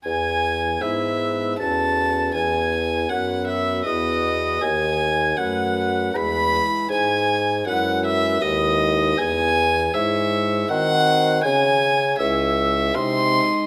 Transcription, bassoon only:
\new Staff \with { instrumentName = "Bassoon" } { \clef bass \time 3/4 \key e \major \tempo 4 = 79 e,4 gis,4 e,4 | e,4 fis,4 e,4 | dis,4 fis,4 e,8 r8 | gis,4 fis,4 dis,4 |
\key cis \minor e,4 gis,4 ees4 | cis4 cis,4 bis,8 r8 | }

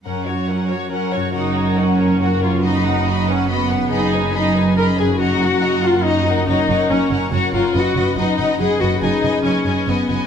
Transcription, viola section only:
\new Staff \with { instrumentName = "Viola section" } { \time 3/4 \key fis \major \tempo 4 = 141 cis'8 fis'8 cis'8 fis'8 cis'8 fis'8 | dis'4 cis'4 fis'8 eis'8 | dis'4. cis'8 b4 | dis'4 dis'4 ais'8 gis'8 |
fis'4. eis'8 dis'4 | dis'4 cis'4 fis'8 eis'8 | fis'4 dis'4 gis'8 fis'8 | dis'4 cis'4 b4 | }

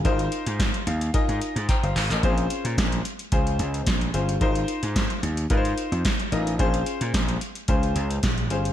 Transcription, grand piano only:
\new Staff \with { instrumentName = "Grand piano" } { \time 4/4 \key bes \dorian \tempo 4 = 110 << { r4. f''8 aes''4 <c'' g'' bes''>16 <c'' f''>8 <bes' ees''>16~ | <bes' ees''>16 r2. r8. | r1 | r1 | } \\ { <ees' f' bes' c''>4. r8 <ees' f' bes' ees''>4 r4 | <c' des' f' aes' c''>4. r8 <des' f' aes' c''>4 r8 <des' f' aes' c''>8 | <ees' f' bes' c''>4. r8 <ees' f' bes' ces'' c''>4 r8 <ees' f' bes' ees''>8 | <des' f' aes' c''>4. r8 <des' f' aes' c''>4 r8 <des' f' aes' c''>8 | } >> }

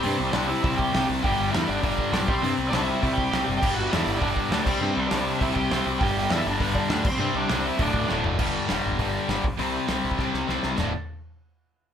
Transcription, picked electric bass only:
\new Staff \with { instrumentName = "Picked electric bass" } { \clef bass \time 4/4 \key c \lydian \tempo 4 = 201 g,8 c,8 c,4 c,8 c,8 c,8 c,8 | g,,8 g,,8 e,8 g,,8 g,,4 b,,8 c,8 | g,8 c,8 c,4 c,8 c,8 c,8 fis,,8 | g,,8 g,,8 e,8 g,,8 g,,4 d,8 c,8 |
g,8 c,8 c,4 c,8 c,8 c,8 c,8 | g,,8 g,,8 e,8 g,,8 g,,4 d,8 c,8 | g,8 c,8 c,4 d,,8 d,,8 d,,8 fis,,8 | g,,4 e,,8 g,,8 g,,4 g,,8 c,8 |
c,4 c,8 c,8 c,8 c,8 c,8 c,8 | d,,8 r2. r8 | }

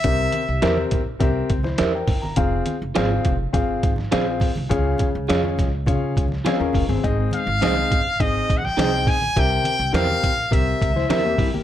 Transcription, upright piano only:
\new Staff \with { instrumentName = "Upright piano" } { \time 4/4 \key c \phrygian \tempo 4 = 103 << { c4. r4 r16 <e' c''>16 <g' e''>16 <bes' g''>8 bes''16~ | bes''16 r2. r8. | des4. r2 r8 | aes,4. r2 r8 |
c4. r2 r8 | } \\ { <c' g' bes' e''>8 r8 <c' g' bes' e''>8 r8 <c' g' bes' e''>8 r4. | <c' f' aes' f''>8 r8 <c' f' aes' f''>8 r8 <c' f' aes' f''>8 r8 <c' f' aes' f''>8 r8 | <des' f' aes' f''>8 r8 <des' f' aes' f''>8 r8 <des' f' aes' f''>8 r8 <des' f' aes' f''>8 r8 | <c' ees' aes' ees''>8 r8 <c' ees' aes' ees''>8 r8 <c' ees' aes' ees''>8 r8 <c' ees' aes' ees''>8 r8 |
<c' g' bes' e''>8 r8 <c' g' bes' g''>8 r8 <c' g' bes' e''>8 r8 <c' g' bes' e''>8 r8 | } >> }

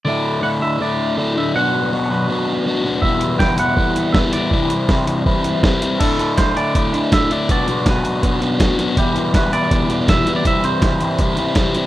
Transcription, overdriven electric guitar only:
\new Staff \with { instrumentName = "Overdriven electric guitar" } { \time 4/4 \key d \mixolydian \tempo 4 = 162 <d a d' e'>4 <d a d' e'>8 <a d' e'>8 <d a d' e'>4 <d a d' e'>8 <a d' e'>8 | <b, fis b d' fis'>4 <b, fis b d' fis'>8 <b d' fis'>8 <fis b d' fis'>4 <fis b d' fis'>8 <b d' fis'>8 | <e, b, e g b e'>4 <e, b, e g b e'>8 <e g b e'>8 <e g b e'>4 <e g b e'>8 <e g b e'>8 | <c e g c' e'>4 <c e g c' e'>8 <g c' e'>8 <e g c' e'>4 <e g c' e'>8 <g c' e'>8 |
<d a d' e'>8 <d a d' e'>8 <d a d' e'>8 <d a d' e'>8 <d a d' e'>8 <d a d' e'>8 <d a d' e'>8 <d a d' e'>8 | <b, fis b d' fis'>8 <b, fis b d' fis'>8 <b, fis b d' fis'>8 <b, fis b d' fis'>8 <b, fis b d' fis'>8 <b, fis b d' fis'>8 <b, fis b d' fis'>8 <b, fis b d' fis'>8 | <e, b, e g b e'>8 <e, b, e g b e'>8 <e, b, e g b e'>8 <e, b, e g b e'>8 <e, b, e g b e'>8 <e, b, e g b e'>8 <e, b, e g b e'>8 <e, b, e g b e'>8 | <c e g c' e'>8 <c e g c' e'>8 <c e g c' e'>8 <c e g c' e'>8 <c e g c' e'>8 <c e g c' e'>8 <c e g c' e'>8 <c e g c' e'>8 | }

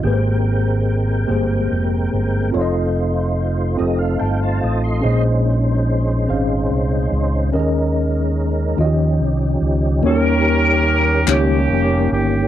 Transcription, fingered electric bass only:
\new Staff \with { instrumentName = "Fingered electric bass" } { \clef bass \time 6/8 \key ees \mixolydian \tempo 4. = 48 aes,,4. g,,8 f,,8 g,,8 | f,,4. f,,8 g,,8 a,,8 | bes,,4. aes,,8 c,8 des,8 | ees,4. ees,8 c,8 des,8 |
ees,4. des,8 f,,8 g,,8 | }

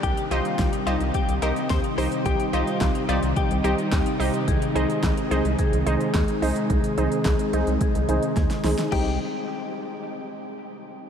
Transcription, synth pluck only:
\new Staff \with { instrumentName = "Synth pluck" } { \time 4/4 \key c \minor \tempo 4 = 108 r8 <ees' g' c'' ees''>8 r8 <ees' g' c'' ees''>8 r8 <ees' g' c'' ees''>8 r8 <ees' g' c'' ees''>8 | r8 <ees' g' c'' ees''>8 r8 <ees' g' c'' d''>8 r8 <ees' g' c'' ees''>8 r8 <ees' g' c'' ees''>8 | r8 <ees' aes' c'' ees''>8 r8 <ees' aes' c'' ees''>8 r8 <ees' aes' c'' ees''>8 r8 <ees' aes' c'' ees''>8 | r8 <ees' aes' c'' ees''>8 r8 <ees' aes' c'' ees''>8 r8 <ees' aes' c'' ees''>8 r8 <ees' aes' c'' ees''>8 |
<ees' g' c'' ees''>8 r2. r8 | }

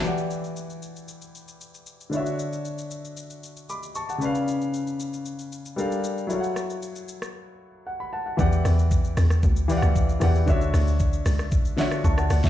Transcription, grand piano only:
\new Staff \with { instrumentName = "Grand piano" } { \time 4/4 \key e \dorian \tempo 4 = 115 << { r1 | r2. <b'' d'''>8 <a'' cis'''>16 <fis'' a''>16~ | <fis'' a''>16 r2. r8. | r2. fis''16 b''16 <fis'' a''>16 fis''16~ |
fis''16 r2. r8. | r2 r8 fis''8 <a'' cis'''>16 <fis'' a''>16 <d'' fis''>16 <cis'' e''>16 | } \\ { <e e' g' d'' fis''>1 | <d d' e' fis' cis'' e''>1 | <cis cis' b' d'' eis''>2. <g d' a' bes' f''>4 | <fis e' a' cis'' f'' fis''>2.~ <fis e' a' cis'' f'' fis''>8 r8 |
<e e' g' d'' fis''>4. r4 <e e' g' d'' f'' fis''>4 <e e' g' d'' fis''>8 | <d d' fis' cis'' e''>4. r4 <d d' f' fis' cis'' e''>4 r8 | } >> }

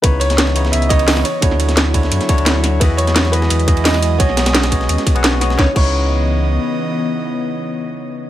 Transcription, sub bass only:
\new Staff \with { instrumentName = "Sub bass" } { \clef bass \time 4/4 \key cis \minor \tempo 4 = 173 cis,2 cis,4. r8 | d,2 fis,16 r8 d,4~ d,16 | e,2 e,2 | b,,2 dis,16 r8 b,,4~ b,,16 |
cis,16 r16 cis,2~ cis,8 r4 | r1 | }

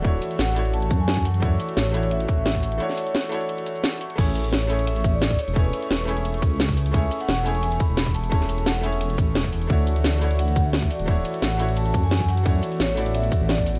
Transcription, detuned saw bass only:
\new Staff \with { instrumentName = "Detuned saw bass" } { \clef bass \time 4/4 \key d \lydian \tempo 4 = 174 d,,8 r8 a,,4. fis,4.~ | fis,8 r8 a,,4. r16 a,,4~ a,,16 | r1 | a,,2.~ a,,8 r16 e,,16~ |
e,,8 r8 e,,4. cis,4.~ | cis,8 r8 e,,4. r16 e,,4~ e,,16~ | e,,4 e,,4. a,,8 e,,8 e,,8 | d,2.~ d,8 r16 d,,16~ |
d,,8 r8 a,,4. fis,4.~ | fis,8 r8 a,,4. r16 a,,4~ a,,16 | }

